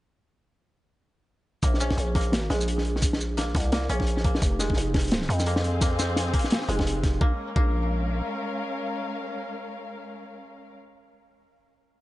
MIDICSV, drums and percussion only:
0, 0, Header, 1, 2, 480
1, 0, Start_track
1, 0, Key_signature, -5, "minor"
1, 0, Tempo, 348837
1, 2242, Time_signature, 4, 2, 24, 8
1, 16526, End_track
2, 0, Start_track
2, 0, Title_t, "Drums"
2, 2239, Note_on_c, 9, 82, 74
2, 2240, Note_on_c, 9, 36, 121
2, 2243, Note_on_c, 9, 42, 92
2, 2376, Note_off_c, 9, 82, 0
2, 2378, Note_off_c, 9, 36, 0
2, 2381, Note_off_c, 9, 42, 0
2, 2395, Note_on_c, 9, 40, 52
2, 2483, Note_on_c, 9, 82, 74
2, 2532, Note_off_c, 9, 40, 0
2, 2620, Note_off_c, 9, 82, 0
2, 2621, Note_on_c, 9, 40, 84
2, 2622, Note_on_c, 9, 36, 62
2, 2721, Note_on_c, 9, 42, 98
2, 2758, Note_off_c, 9, 40, 0
2, 2760, Note_off_c, 9, 36, 0
2, 2859, Note_off_c, 9, 42, 0
2, 2956, Note_on_c, 9, 40, 50
2, 2960, Note_on_c, 9, 36, 106
2, 2972, Note_on_c, 9, 42, 64
2, 3039, Note_off_c, 9, 42, 0
2, 3039, Note_on_c, 9, 42, 80
2, 3094, Note_off_c, 9, 40, 0
2, 3098, Note_off_c, 9, 36, 0
2, 3176, Note_off_c, 9, 42, 0
2, 3194, Note_on_c, 9, 40, 53
2, 3205, Note_on_c, 9, 42, 91
2, 3208, Note_on_c, 9, 38, 103
2, 3332, Note_off_c, 9, 40, 0
2, 3343, Note_off_c, 9, 42, 0
2, 3345, Note_off_c, 9, 38, 0
2, 3443, Note_on_c, 9, 40, 80
2, 3445, Note_on_c, 9, 42, 78
2, 3581, Note_off_c, 9, 40, 0
2, 3583, Note_off_c, 9, 42, 0
2, 3587, Note_on_c, 9, 82, 52
2, 3685, Note_on_c, 9, 42, 89
2, 3725, Note_off_c, 9, 82, 0
2, 3823, Note_off_c, 9, 42, 0
2, 3824, Note_on_c, 9, 40, 51
2, 3918, Note_on_c, 9, 42, 50
2, 3962, Note_off_c, 9, 40, 0
2, 4056, Note_off_c, 9, 42, 0
2, 4073, Note_on_c, 9, 40, 57
2, 4157, Note_on_c, 9, 82, 71
2, 4160, Note_on_c, 9, 36, 123
2, 4165, Note_on_c, 9, 42, 98
2, 4210, Note_off_c, 9, 40, 0
2, 4294, Note_off_c, 9, 82, 0
2, 4298, Note_off_c, 9, 36, 0
2, 4302, Note_off_c, 9, 42, 0
2, 4311, Note_on_c, 9, 40, 83
2, 4410, Note_on_c, 9, 82, 72
2, 4449, Note_off_c, 9, 40, 0
2, 4547, Note_off_c, 9, 82, 0
2, 4646, Note_on_c, 9, 42, 98
2, 4657, Note_on_c, 9, 40, 62
2, 4784, Note_off_c, 9, 42, 0
2, 4795, Note_off_c, 9, 40, 0
2, 4881, Note_on_c, 9, 36, 111
2, 4885, Note_on_c, 9, 40, 48
2, 4898, Note_on_c, 9, 42, 67
2, 4954, Note_off_c, 9, 42, 0
2, 4954, Note_on_c, 9, 42, 74
2, 5018, Note_off_c, 9, 36, 0
2, 5023, Note_off_c, 9, 40, 0
2, 5091, Note_off_c, 9, 42, 0
2, 5120, Note_on_c, 9, 42, 92
2, 5125, Note_on_c, 9, 40, 80
2, 5127, Note_on_c, 9, 38, 113
2, 5257, Note_off_c, 9, 42, 0
2, 5262, Note_off_c, 9, 40, 0
2, 5265, Note_off_c, 9, 38, 0
2, 5363, Note_on_c, 9, 42, 85
2, 5501, Note_off_c, 9, 42, 0
2, 5502, Note_on_c, 9, 36, 65
2, 5514, Note_on_c, 9, 40, 49
2, 5596, Note_on_c, 9, 42, 84
2, 5639, Note_off_c, 9, 36, 0
2, 5652, Note_off_c, 9, 40, 0
2, 5734, Note_off_c, 9, 42, 0
2, 5741, Note_on_c, 9, 40, 58
2, 5841, Note_on_c, 9, 36, 115
2, 5845, Note_on_c, 9, 42, 53
2, 5878, Note_off_c, 9, 40, 0
2, 5979, Note_off_c, 9, 36, 0
2, 5982, Note_off_c, 9, 42, 0
2, 5984, Note_on_c, 9, 40, 81
2, 6080, Note_on_c, 9, 82, 75
2, 6082, Note_on_c, 9, 36, 123
2, 6094, Note_on_c, 9, 42, 97
2, 6121, Note_off_c, 9, 40, 0
2, 6218, Note_off_c, 9, 82, 0
2, 6220, Note_off_c, 9, 36, 0
2, 6232, Note_off_c, 9, 42, 0
2, 6317, Note_on_c, 9, 40, 51
2, 6329, Note_on_c, 9, 82, 80
2, 6455, Note_off_c, 9, 40, 0
2, 6463, Note_on_c, 9, 36, 68
2, 6467, Note_off_c, 9, 82, 0
2, 6514, Note_on_c, 9, 40, 46
2, 6571, Note_on_c, 9, 42, 98
2, 6601, Note_off_c, 9, 36, 0
2, 6651, Note_off_c, 9, 40, 0
2, 6708, Note_off_c, 9, 42, 0
2, 6802, Note_on_c, 9, 36, 109
2, 6803, Note_on_c, 9, 42, 31
2, 6806, Note_on_c, 9, 40, 77
2, 6870, Note_off_c, 9, 42, 0
2, 6870, Note_on_c, 9, 42, 82
2, 6939, Note_off_c, 9, 42, 0
2, 6939, Note_on_c, 9, 42, 49
2, 6940, Note_off_c, 9, 36, 0
2, 6944, Note_off_c, 9, 40, 0
2, 6987, Note_off_c, 9, 42, 0
2, 6987, Note_on_c, 9, 42, 59
2, 7035, Note_off_c, 9, 42, 0
2, 7035, Note_on_c, 9, 42, 92
2, 7044, Note_on_c, 9, 38, 127
2, 7172, Note_off_c, 9, 42, 0
2, 7177, Note_on_c, 9, 40, 53
2, 7181, Note_off_c, 9, 38, 0
2, 7294, Note_on_c, 9, 42, 74
2, 7315, Note_off_c, 9, 40, 0
2, 7422, Note_on_c, 9, 82, 54
2, 7426, Note_on_c, 9, 40, 54
2, 7431, Note_off_c, 9, 42, 0
2, 7515, Note_on_c, 9, 42, 79
2, 7559, Note_off_c, 9, 82, 0
2, 7563, Note_off_c, 9, 40, 0
2, 7653, Note_off_c, 9, 42, 0
2, 7653, Note_on_c, 9, 40, 86
2, 7762, Note_on_c, 9, 42, 52
2, 7790, Note_off_c, 9, 40, 0
2, 7899, Note_off_c, 9, 42, 0
2, 7997, Note_on_c, 9, 40, 48
2, 8000, Note_on_c, 9, 36, 126
2, 8001, Note_on_c, 9, 82, 75
2, 8012, Note_on_c, 9, 42, 92
2, 8134, Note_off_c, 9, 40, 0
2, 8138, Note_off_c, 9, 36, 0
2, 8138, Note_off_c, 9, 82, 0
2, 8150, Note_off_c, 9, 42, 0
2, 8244, Note_on_c, 9, 82, 77
2, 8247, Note_on_c, 9, 40, 53
2, 8381, Note_off_c, 9, 82, 0
2, 8384, Note_off_c, 9, 40, 0
2, 8482, Note_on_c, 9, 40, 78
2, 8489, Note_on_c, 9, 42, 96
2, 8619, Note_off_c, 9, 40, 0
2, 8627, Note_off_c, 9, 42, 0
2, 8718, Note_on_c, 9, 42, 60
2, 8719, Note_on_c, 9, 36, 107
2, 8795, Note_off_c, 9, 42, 0
2, 8795, Note_on_c, 9, 42, 75
2, 8856, Note_off_c, 9, 36, 0
2, 8865, Note_on_c, 9, 40, 55
2, 8932, Note_off_c, 9, 42, 0
2, 8948, Note_on_c, 9, 42, 88
2, 8976, Note_on_c, 9, 38, 127
2, 9002, Note_off_c, 9, 40, 0
2, 9086, Note_off_c, 9, 42, 0
2, 9099, Note_on_c, 9, 40, 49
2, 9113, Note_off_c, 9, 38, 0
2, 9208, Note_on_c, 9, 42, 83
2, 9237, Note_off_c, 9, 40, 0
2, 9341, Note_on_c, 9, 36, 66
2, 9345, Note_off_c, 9, 42, 0
2, 9352, Note_on_c, 9, 40, 77
2, 9451, Note_on_c, 9, 42, 88
2, 9479, Note_off_c, 9, 36, 0
2, 9490, Note_off_c, 9, 40, 0
2, 9589, Note_off_c, 9, 42, 0
2, 9681, Note_on_c, 9, 36, 108
2, 9683, Note_on_c, 9, 40, 47
2, 9684, Note_on_c, 9, 42, 52
2, 9819, Note_off_c, 9, 36, 0
2, 9820, Note_off_c, 9, 40, 0
2, 9821, Note_off_c, 9, 42, 0
2, 9921, Note_on_c, 9, 36, 116
2, 10059, Note_off_c, 9, 36, 0
2, 10403, Note_on_c, 9, 36, 114
2, 10540, Note_off_c, 9, 36, 0
2, 16526, End_track
0, 0, End_of_file